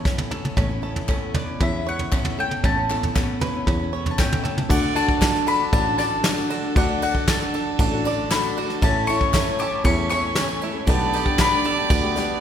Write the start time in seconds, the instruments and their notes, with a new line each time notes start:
Already playing: picked electric bass E2, five-string banjo B4 C#5, mandolin A5
0.05 steel-string acoustic guitar A2 A3 B3 C#4 E4, five-string banjo C#4, kick, snare
0.18 floor tom, mid tom
0.30 steel-string acoustic guitar A3 B3 C#4 E4, five-string banjo A4, mid tom
0.45 mid tom
0.56 picked electric bass A1, steel-string acoustic guitar A2 A3 B3 C#4 E4, five-string banjo C#4, kick, floor tom
0.69 steel-string acoustic guitar B3 C#4 E4
0.82 steel-string acoustic guitar A3 B3 C#4 E4, five-string banjo A4
0.96 floor tom
1.08 steel-string acoustic guitar A2 A3 B3 C#4 E4, five-string banjo C#4, kick, clap
1.34 steel-string acoustic guitar A3 B3 C#4 E4, five-string banjo B4, mandolin D5, floor tom, mid tom
1.46 steel-string acoustic guitar B3 C#4 E4
1.60 picked electric bass E2, five-string banjo C#4, mandolin E5, kick, floor tom
1.73 steel-string acoustic guitar B3 C#4 E4
1.85 steel-string acoustic guitar A3 B3 C#4 E4, five-string banjo C#5, mandolin F#5
1.98 steel-string acoustic guitar B3 C#4 E4, floor tom
2.11 steel-string acoustic guitar A2 A3 B3 C#4 E4, five-string banjo C#4, kick, clap
2.25 floor tom, mid tom
2.38 steel-string acoustic guitar A3 B3 C#4 E4, five-string banjo A4, mandolin G5
2.49 steel-string acoustic guitar B3 C#4 E4, mid tom
2.64 picked electric bass A1, steel-string acoustic guitar A2 A3 B3 C#4 E4, five-string banjo C#4, mandolin A5, kick, floor tom
2.75 steel-string acoustic guitar B3 C#4 E4
2.89 steel-string acoustic guitar A3 B3 C#4 E4, five-string banjo A4, clap
3.03 floor tom
3.14 steel-string acoustic guitar A2 A3 B3 C#4 E4, five-string banjo C#4, kick, snare, clap
3.40 steel-string acoustic guitar A3 B3 C#4 E4, five-string banjo B4, floor tom, mid tom
3.53 steel-string acoustic guitar B3 C#4 E4
3.67 picked electric bass E2, five-string banjo C#4, kick, floor tom
3.80 steel-string acoustic guitar B3 C#4 E4
3.93 steel-string acoustic guitar A3 B3 C#4 E4, five-string banjo C#5
4.06 steel-string acoustic guitar B3 C#4 E4, floor tom
4.11 mandolin A5
4.18 steel-string acoustic guitar A2 A3 B3 C#4 E4, five-string banjo C#4, mandolin G5, kick, snare, clap
4.32 floor tom, mid tom
4.44 steel-string acoustic guitar A3 B3 C#4 E4, five-string banjo A4, mid tom
4.58 steel-string acoustic guitar B3 C#4 E4, mid tom
4.69 felt piano D2 D3 F#3 A3 D4 A4 D5, picked electric bass D2, steel-string acoustic guitar D3 D4 F#4 A4, harmonium D3 D4 F#4 A4, five-string banjo D4, fiddle D5, mandolin F#5, kick, crash
4.95 felt piano F#3 A3 D4 A4 D5, five-string banjo F#4, mandolin A5, ride, tambourine
5.08 steel-string acoustic guitar D4 F#4 A4, kick
5.21 steel-string acoustic guitar D3 D4 F#4 A4, felt piano F#3 A3 D4 A4 D5, five-string banjo D4, fiddle A4, kick, snare, clap, ride, tambourine
5.32 steel-string acoustic guitar D4 F#4 A4, snare
5.46 felt piano F#3 A3 D4 A4 D5, five-string banjo A4, mandolin B5, ride, tambourine
5.58 steel-string acoustic guitar D4 F#4 A4
5.72 picked electric bass A1, felt piano F#3 A3 D4 A4 C#5, five-string banjo D4, mandolin A5, kick, ride
5.85 steel-string acoustic guitar D4 F#4 A4
5.98 steel-string acoustic guitar D3 D4 F#4 A4, felt piano F#3 A3 D4 A4 D5, five-string banjo D5, mandolin A5, snare, clap, ride, tambourine
6.23 steel-string acoustic guitar D3 D4 F#4 A4, felt piano F#3 A3 D4 A4 D5, five-string banjo D4, snare, clap, ride, tambourine
6.36 steel-string acoustic guitar D4 F#4 A4, tambourine
6.49 steel-string acoustic guitar D3 D4 F#4 A4, felt piano F#3 A3 D4 A4 D5, five-string banjo F#4, ride, tambourine
6.63 steel-string acoustic guitar D4 F#4 A4
6.76 felt piano D2 D3 F#3 A3 D4 A4 D5, picked electric bass D2, steel-string acoustic guitar D3 D4 F#4 A4, five-string banjo D4, mandolin F#5, kick, ride
7.01 felt piano F#3 A3 D4 A4 D5, five-string banjo F#4, mandolin F#5, ride, tambourine
7.14 steel-string acoustic guitar D4 F#4 A4, kick
7.27 steel-string acoustic guitar D3 D4 F#4 A4, felt piano F#3 A3 D4 A4 D5, five-string banjo D4, mandolin A5, kick, snare, clap, ride, tambourine
7.40 steel-string acoustic guitar D4 F#4 A4, snare
7.52 felt piano F#3 A3 D4 A4 D5, five-string banjo A4, ride
7.79 picked electric bass A1, felt piano F#3 A3 D4 A4 C#5, five-string banjo D4, kick, ride
7.91 steel-string acoustic guitar D4 F#4 A4
8.04 steel-string acoustic guitar D3 D4 F#4 A4, felt piano F#3 A3 D4 A4 D5, five-string banjo D5, ride, tambourine
8.30 steel-string acoustic guitar D3 D4 F#4 A4, felt piano F#3 A3 D4 A4, five-string banjo D4, mandolin B5, snare, clap, ride, tambourine
8.43 tambourine
8.55 steel-string acoustic guitar D3 D4 F#4 A4, felt piano F#3 A3 D4 A4 D5, five-string banjo F#4, ride, tambourine
8.68 steel-string acoustic guitar D4 F#4 A4, snare
8.81 felt piano A1 A2 A3 C#4 E4 C#5 E5, picked electric bass A1, steel-string acoustic guitar A2 E3 A3 C#4 A4, harmonium A3 C#4 E4, five-string banjo C#4, fiddle C#5, mandolin A5, kick, ride
9.07 felt piano A3 C#4 E4 C#5 E5, five-string banjo E4, mandolin C#6, ride, tambourine
9.20 steel-string acoustic guitar A3 C#4 A4, kick
9.32 steel-string acoustic guitar A2 E3 A3 C#4 A4, felt piano A3 C#4 E4 C#5 E5, five-string banjo C#4, kick, snare, clap, ride, tambourine
9.45 steel-string acoustic guitar A3 C#4 A4
9.59 felt piano A3 C#4 E4 C#5 G5, five-string banjo A4, mandolin D6, ride, tambourine
9.71 steel-string acoustic guitar A3 C#4 A4
9.84 picked electric bass E2, felt piano A3 C#4 E4 C#5 E5, five-string banjo C#4, fiddle C#5, mandolin C#6, kick, ride
9.97 steel-string acoustic guitar A3 C#4 A4
10.10 steel-string acoustic guitar E3 A3 C#4 A4, felt piano A3 C#4 E4 C#5 E5, five-string banjo C#5, mandolin C#6, snare, clap, ride, tambourine
10.35 steel-string acoustic guitar A2 E3 A3 C#4 A4, felt piano A3 C#4 E4 C#5 E5, five-string banjo C#4, snare, clap, ride, tambourine
10.49 tambourine
10.61 steel-string acoustic guitar E3 A3 C#4 A4, felt piano A3 C#4 E4 C#5 E5, five-string banjo E4, ride
10.73 steel-string acoustic guitar A3 C#4 A4
10.86 picked electric bass B1, felt piano B1 B2 G3 B3 D4 A4 D5, steel-string acoustic guitar B2 G3 A3 D4 G4, harmonium B3 G4, five-string banjo B3, fiddle D5, mandolin A5, kick, ride, tambourine
11.00 tambourine
11.12 felt piano G3 B3 D4 A4 D5, five-string banjo G4, ride, tambourine
11.17 mandolin A5
11.25 steel-string acoustic guitar A3 D4 G4, kick
11.38 steel-string acoustic guitar B2 G3 A3 D4 G4, felt piano G3 B3 D4 D5, five-string banjo B3, mandolin B5, kick, snare, clap, ride, tambourine
11.51 steel-string acoustic guitar A3 D4 G4, tambourine
11.64 felt piano G3 B3 D4 A4 D5, five-string banjo A4, ride, tambourine
11.76 steel-string acoustic guitar A3 D4 G4, tambourine
11.89 picked electric bass D2, felt piano G3 B3 D4 A4 D5, five-string banjo B3, kick, ride
12.02 steel-string acoustic guitar A3 D4 G4
12.15 steel-string acoustic guitar G3 A3 D4 G4, felt piano G3 B3 D4 A4 D5, five-string banjo B4, snare, ride, tambourine